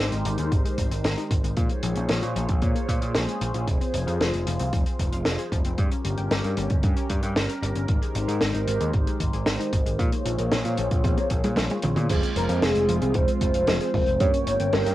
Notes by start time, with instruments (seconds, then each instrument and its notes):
Already playing: analog synth pad G#3 D#4 G4 A#4 C5
0.12 picked electric bass G#1, synth arpeggio sound D#4, closed hi-hat
0.25 picked electric bass G#1, synth arpeggio sound D#3, closed hi-hat
0.38 picked electric bass D#2, synth arpeggio sound G#3, closed hi-hat
0.52 picked electric bass G#1, synth arpeggio sound D#3, kick, closed hi-hat
0.65 synth arpeggio sound G#3, closed hi-hat
0.78 picked electric bass G#1, synth arpeggio sound D#3, kick, closed hi-hat
0.91 picked electric bass G#1, synth arpeggio sound C4, closed hi-hat
1.04 picked electric bass G#1, synth arpeggio sound D#3, snare, closed hi-hat
1.18 synth arpeggio sound D#4, closed hi-hat
1.31 picked electric bass G#1, synth arpeggio sound D#3, kick, closed hi-hat
1.44 picked electric bass G#1, synth arpeggio sound G#3, closed hi-hat
1.57 picked electric bass A#2, synth arpeggio sound F3, analog synth pad A#3 F4 G#4 C5 C#5, kick, closed hi-hat
1.69 synth arpeggio sound A#3, closed hi-hat
1.83 picked electric bass A#1, synth arpeggio sound F3, closed hi-hat
1.96 picked electric bass A#1, synth arpeggio sound C#4, closed hi-hat
2.09 picked electric bass A#1, synth arpeggio sound F3, snare, closed hi-hat
2.22 picked electric bass A#2, synth arpeggio sound F4, closed hi-hat
2.36 picked electric bass A#1, synth arpeggio sound F3, closed hi-hat
2.49 picked electric bass A#1, synth arpeggio sound A#3, kick, closed hi-hat
2.62 picked electric bass A#2, synth arpeggio sound F3, kick, closed hi-hat
2.75 synth arpeggio sound A#3, closed hi-hat
2.89 picked electric bass A#2, synth arpeggio sound F4, kick, closed hi-hat
3.02 picked electric bass A#2, synth arpeggio sound F3, closed hi-hat
3.15 picked electric bass A#1, synth arpeggio sound C#4, snare, closed hi-hat
3.28 synth arpeggio sound G#3, closed hi-hat
3.41 picked electric bass A#1, synth arpeggio sound F3, closed hi-hat
3.54 picked electric bass A#1, synth arpeggio sound F3, closed hi-hat
3.68 picked electric bass F1, synth arpeggio sound F3, analog synth pad F4, kick, closed hi-hat
3.81 synth arpeggio sound C4, closed hi-hat
3.94 picked electric bass F1, synth arpeggio sound F3, closed hi-hat
4.07 picked electric bass F2, synth arpeggio sound F5, closed hi-hat
4.20 picked electric bass F1, synth arpeggio sound F3, snare, closed hi-hat
4.33 picked electric bass F1, synth arpeggio sound G#4, closed hi-hat
4.47 picked electric bass F1, synth arpeggio sound F3, closed hi-hat
4.59 picked electric bass C2, synth arpeggio sound C4, closed hi-hat
4.73 picked electric bass F1, synth arpeggio sound F3, kick, closed hi-hat
4.86 synth arpeggio sound C4, closed hi-hat
4.99 picked electric bass F1, synth arpeggio sound F3, kick, closed hi-hat
5.12 picked electric bass F1, synth arpeggio sound F5, closed hi-hat
5.25 picked electric bass F1, synth arpeggio sound F3, snare, closed hi-hat
5.39 synth arpeggio sound G#4, closed hi-hat
5.52 picked electric bass F1, synth arpeggio sound F3, kick, closed hi-hat
5.65 picked electric bass F1, synth arpeggio sound C4, closed hi-hat
5.78 picked electric bass G2, synth arpeggio sound G3, analog synth pad C#4 G4 A#4, kick, closed hi-hat
5.91 synth arpeggio sound C#4, closed hi-hat
6.05 picked electric bass G1, synth arpeggio sound G3, closed hi-hat
6.18 picked electric bass G1, synth arpeggio sound G5, closed hi-hat
6.31 picked electric bass G1, synth arpeggio sound G3, snare, closed hi-hat
6.44 picked electric bass G2, synth arpeggio sound A#4, closed hi-hat
6.57 picked electric bass G1, synth arpeggio sound G3, closed hi-hat
6.70 picked electric bass G1, synth arpeggio sound C#4, kick, closed hi-hat
6.83 picked electric bass G2, synth arpeggio sound G3, kick, closed hi-hat
6.97 synth arpeggio sound C#4, closed hi-hat
7.10 picked electric bass G2, synth arpeggio sound G3, kick, closed hi-hat
7.23 picked electric bass G2, synth arpeggio sound G5, closed hi-hat
7.36 picked electric bass G1, synth arpeggio sound G3, snare, closed hi-hat
7.49 synth arpeggio sound A#4, closed hi-hat
7.62 picked electric bass G1, synth arpeggio sound G3, closed hi-hat
7.76 picked electric bass G1, synth arpeggio sound C#4, closed hi-hat
7.88 picked electric bass G#1, synth arpeggio sound D#3, analog synth pad G#3 D#4 G4 C5, kick, closed hi-hat
8.02 synth arpeggio sound G#3, closed hi-hat
8.15 picked electric bass G#1, synth arpeggio sound D#3, closed hi-hat
8.28 picked electric bass G#2, synth arpeggio sound G#4, closed hi-hat
8.41 picked electric bass G#1, synth arpeggio sound D#3, snare, closed hi-hat
8.55 picked electric bass G#1, synth arpeggio sound D#4, closed hi-hat
8.67 picked electric bass G#1, synth arpeggio sound D#3, closed hi-hat
8.81 picked electric bass D#2, synth arpeggio sound G#3, closed hi-hat
8.94 picked electric bass G#1, synth arpeggio sound D#3, kick, closed hi-hat
9.07 synth arpeggio sound G#3, closed hi-hat
9.20 picked electric bass G#1, synth arpeggio sound D#3, kick, closed hi-hat
9.33 picked electric bass G#1, synth arpeggio sound G#4, closed hi-hat
9.46 picked electric bass G#1, synth arpeggio sound D#3, snare, closed hi-hat
9.60 synth arpeggio sound D#4, closed hi-hat
9.73 picked electric bass G#1, synth arpeggio sound D#3, kick, closed hi-hat
9.86 picked electric bass G#1, synth arpeggio sound G#3, closed hi-hat
9.99 picked electric bass A#2, synth arpeggio sound F3, analog synth pad A#3 F4 G#4 C5 C#5, kick, closed hi-hat
10.12 synth arpeggio sound A#3, closed hi-hat
10.25 picked electric bass A#1, synth arpeggio sound F3, closed hi-hat
10.39 picked electric bass A#1, synth arpeggio sound A#4, closed hi-hat
10.52 picked electric bass A#1, synth arpeggio sound F3, snare, closed hi-hat
10.65 picked electric bass A#2, synth arpeggio sound F4, closed hi-hat
10.78 picked electric bass A#1, synth arpeggio sound F3, closed hi-hat
10.91 picked electric bass A#1, synth arpeggio sound A#3, kick, closed hi-hat
11.04 picked electric bass A#1, synth arpeggio sound F3, kick, closed hi-hat, high tom
11.18 synth arpeggio sound A#3, closed hi-hat, high tom
11.30 picked electric bass A#1, synth arpeggio sound A#3, kick, closed hi-hat
11.44 picked electric bass A#2, synth arpeggio sound G#4, closed hi-hat, mid tom
11.56 picked electric bass A#1, synth arpeggio sound F3, snare, closed hi-hat, mid tom
11.70 synth arpeggio sound G#3, closed hi-hat, mid tom
11.82 picked electric bass A#1, synth arpeggio sound C#4, closed hi-hat, mid tom
11.96 picked electric bass A#2, synth arpeggio sound G#4, closed hi-hat, mid tom
12.09 picked electric bass F1, synth arpeggio sound F3, analog synth pad G#3 C4 F4, fm electric piano G#3 C4 F4 G#4 C5, kick, closed hi-hat, crash
12.23 synth arpeggio sound C4, closed hi-hat
12.36 picked electric bass F1, synth arpeggio sound F3, soft synth lead A#4, closed hi-hat
12.49 picked electric bass F2, synth arpeggio sound F5, closed hi-hat
12.62 picked electric bass F1, synth arpeggio sound F3, soft synth lead G#4, snare, closed hi-hat
12.75 picked electric bass F1, synth arpeggio sound G#4, closed hi-hat
12.89 picked electric bass F1, synth arpeggio sound F3, closed hi-hat
13.02 picked electric bass C2, synth arpeggio sound C4, closed hi-hat
13.14 picked electric bass F1, synth arpeggio sound F3, soft synth lead C5, kick, closed hi-hat
13.28 synth arpeggio sound C4, closed hi-hat
13.41 picked electric bass F1, synth arpeggio sound F3, kick, closed hi-hat
13.54 picked electric bass F1, synth arpeggio sound F5, closed hi-hat
13.67 picked electric bass F1, synth arpeggio sound F3, fm electric piano G#3 C4 F4 G#4 D#5, snare, closed hi-hat
13.81 synth arpeggio sound G#4, closed hi-hat
13.94 picked electric bass F1, synth arpeggio sound F3, fm electric piano G#3 C4 F4 G#4 A#4, kick, open hi-hat
14.07 picked electric bass F1, synth arpeggio sound C4, closed hi-hat
14.20 fm electric piano G2 A#3 C#4 G4 A#4 C#5, picked electric bass G2, synth arpeggio sound G3, analog synth pad A#3 C#4 G5, soft synth lead C#5, kick, closed hi-hat
14.34 synth arpeggio sound C#4, closed hi-hat
14.47 picked electric bass G1, synth arpeggio sound G3, closed hi-hat
14.60 picked electric bass G1, synth arpeggio sound G5, closed hi-hat
14.73 picked electric bass G1, synth arpeggio sound G3, soft synth lead A#4, snare, closed hi-hat
14.86 picked electric bass G2, synth arpeggio sound A#4, closed hi-hat